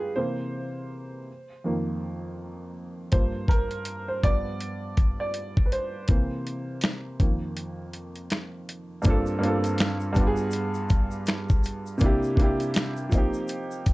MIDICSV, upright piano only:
0, 0, Header, 1, 2, 480
1, 0, Start_track
1, 0, Key_signature, -2, "minor"
1, 0, Tempo, 740741
1, 106, Time_signature, 4, 2, 24, 8
1, 9029, End_track
2, 0, Start_track
2, 0, Title_t, "Upright piano"
2, 0, Program_c, 0, 0
2, 0, Control_c, 0, 64, 127
2, 0, Note_on_c, 0, 43, 50
2, 0, Note_on_c, 0, 53, 45
2, 0, Note_on_c, 0, 59, 55
2, 0, Note_on_c, 0, 65, 72
2, 0, Note_on_c, 0, 67, 77
2, 0, Note_on_c, 0, 68, 86
2, 0, Note_on_c, 0, 71, 87
2, 0, Note_on_c, 0, 74, 88
2, 101, Note_on_c, 0, 72, 85
2, 104, Note_on_c, 0, 48, 50
2, 107, Note_on_c, 0, 52, 47
2, 109, Note_on_c, 0, 58, 61
2, 114, Control_c, 0, 64, 0
2, 115, Note_off_c, 0, 59, 0
2, 116, Note_off_c, 0, 74, 0
2, 117, Note_off_c, 0, 43, 0
2, 118, Note_off_c, 0, 65, 0
2, 118, Note_off_c, 0, 71, 0
2, 119, Note_off_c, 0, 53, 0
2, 119, Note_off_c, 0, 67, 0
2, 121, Note_off_c, 0, 68, 0
2, 214, Control_c, 0, 64, 127
2, 442, Note_off_c, 0, 48, 0
2, 443, Note_off_c, 0, 52, 0
2, 445, Note_off_c, 0, 58, 0
2, 833, Control_c, 0, 64, 0
2, 947, Control_c, 0, 64, 127
2, 1065, Note_on_c, 0, 41, 54
2, 1071, Note_on_c, 0, 51, 45
2, 1074, Note_on_c, 0, 58, 56
2, 1757, Note_off_c, 0, 72, 0
2, 2000, Note_off_c, 0, 41, 0
2, 2002, Note_off_c, 0, 51, 0
2, 2004, Note_off_c, 0, 58, 0
2, 2021, Note_on_c, 0, 72, 94
2, 2025, Note_on_c, 0, 43, 54
2, 2028, Note_on_c, 0, 53, 50
2, 2032, Note_on_c, 0, 58, 58
2, 2034, Control_c, 0, 64, 0
2, 2129, Control_c, 0, 64, 127
2, 2261, Note_on_c, 0, 70, 89
2, 2270, Note_off_c, 0, 72, 0
2, 2646, Note_on_c, 0, 72, 81
2, 2658, Note_off_c, 0, 70, 0
2, 2719, Note_off_c, 0, 43, 0
2, 2721, Note_off_c, 0, 53, 0
2, 2723, Note_off_c, 0, 58, 0
2, 2744, Note_on_c, 0, 43, 55
2, 2746, Note_on_c, 0, 74, 108
2, 2747, Note_off_c, 0, 72, 0
2, 2749, Note_on_c, 0, 53, 46
2, 2752, Note_on_c, 0, 59, 53
2, 2754, Control_c, 0, 64, 0
2, 2867, Control_c, 0, 64, 127
2, 3361, Note_off_c, 0, 74, 0
2, 3371, Note_on_c, 0, 74, 91
2, 3439, Note_off_c, 0, 43, 0
2, 3441, Note_off_c, 0, 53, 0
2, 3443, Note_off_c, 0, 59, 0
2, 3666, Note_on_c, 0, 71, 55
2, 3679, Note_off_c, 0, 74, 0
2, 3704, Note_off_c, 0, 71, 0
2, 3709, Note_on_c, 0, 72, 95
2, 3945, Note_on_c, 0, 48, 56
2, 3951, Note_on_c, 0, 52, 50
2, 3953, Note_on_c, 0, 58, 61
2, 3954, Control_c, 0, 64, 0
2, 4067, Control_c, 0, 64, 127
2, 4640, Note_off_c, 0, 48, 0
2, 4643, Note_off_c, 0, 52, 0
2, 4643, Note_off_c, 0, 58, 0
2, 4664, Note_on_c, 0, 41, 52
2, 4666, Note_on_c, 0, 51, 46
2, 4671, Note_on_c, 0, 58, 55
2, 4672, Control_c, 0, 64, 0
2, 4772, Control_c, 0, 64, 127
2, 5122, Note_off_c, 0, 72, 0
2, 5359, Note_off_c, 0, 41, 0
2, 5360, Note_off_c, 0, 51, 0
2, 5362, Note_off_c, 0, 58, 0
2, 5843, Note_on_c, 0, 43, 82
2, 5852, Note_on_c, 0, 58, 72
2, 5864, Note_on_c, 0, 60, 76
2, 5872, Note_on_c, 0, 62, 78
2, 5873, Control_c, 0, 64, 0
2, 5881, Note_on_c, 0, 65, 81
2, 5894, Note_on_c, 0, 69, 91
2, 6003, Control_c, 0, 64, 127
2, 6067, Note_off_c, 0, 43, 0
2, 6072, Note_off_c, 0, 58, 0
2, 6078, Note_off_c, 0, 60, 0
2, 6082, Note_off_c, 0, 62, 0
2, 6082, Note_on_c, 0, 43, 81
2, 6086, Note_off_c, 0, 65, 0
2, 6090, Note_on_c, 0, 58, 78
2, 6093, Note_off_c, 0, 69, 0
2, 6102, Note_on_c, 0, 60, 76
2, 6108, Note_on_c, 0, 62, 77
2, 6121, Note_on_c, 0, 65, 79
2, 6133, Note_on_c, 0, 69, 91
2, 6552, Note_off_c, 0, 43, 0
2, 6562, Note_on_c, 0, 43, 90
2, 6576, Note_on_c, 0, 59, 84
2, 6578, Note_off_c, 0, 58, 0
2, 6578, Note_off_c, 0, 62, 0
2, 6584, Note_off_c, 0, 60, 0
2, 6588, Note_on_c, 0, 62, 82
2, 6590, Note_off_c, 0, 65, 0
2, 6594, Control_c, 0, 64, 0
2, 6599, Note_off_c, 0, 69, 0
2, 6600, Note_on_c, 0, 65, 77
2, 6614, Note_on_c, 0, 67, 72
2, 6650, Note_off_c, 0, 67, 0
2, 6654, Note_on_c, 0, 68, 100
2, 6725, Control_c, 0, 64, 127
2, 7420, Note_off_c, 0, 43, 0
2, 7428, Note_off_c, 0, 59, 0
2, 7433, Note_off_c, 0, 62, 0
2, 7440, Note_off_c, 0, 65, 0
2, 7467, Note_off_c, 0, 68, 0
2, 7761, Note_on_c, 0, 48, 88
2, 7775, Note_on_c, 0, 58, 82
2, 7787, Note_on_c, 0, 62, 82
2, 7794, Control_c, 0, 64, 0
2, 7801, Note_on_c, 0, 64, 82
2, 7812, Note_on_c, 0, 67, 99
2, 7918, Control_c, 0, 64, 127
2, 7986, Note_off_c, 0, 48, 0
2, 7993, Note_off_c, 0, 58, 0
2, 8000, Note_off_c, 0, 62, 0
2, 8006, Note_off_c, 0, 64, 0
2, 8006, Note_on_c, 0, 48, 84
2, 8012, Note_off_c, 0, 67, 0
2, 8017, Note_on_c, 0, 58, 77
2, 8031, Note_on_c, 0, 62, 79
2, 8044, Note_on_c, 0, 64, 85
2, 8057, Note_on_c, 0, 67, 100
2, 8484, Note_on_c, 0, 53, 83
2, 8489, Note_off_c, 0, 58, 0
2, 8496, Note_off_c, 0, 48, 0
2, 8499, Note_on_c, 0, 58, 77
2, 8508, Note_off_c, 0, 62, 0
2, 8510, Note_on_c, 0, 60, 82
2, 8514, Control_c, 0, 64, 0
2, 8515, Note_off_c, 0, 64, 0
2, 8522, Note_off_c, 0, 67, 0
2, 8523, Note_on_c, 0, 63, 74
2, 8538, Note_on_c, 0, 67, 95
2, 8631, Control_c, 0, 64, 127
2, 9029, Note_off_c, 0, 53, 0
2, 9029, Note_off_c, 0, 58, 0
2, 9029, Note_off_c, 0, 60, 0
2, 9029, Note_off_c, 0, 63, 0
2, 9029, Note_off_c, 0, 67, 0
2, 9029, End_track
0, 0, End_of_file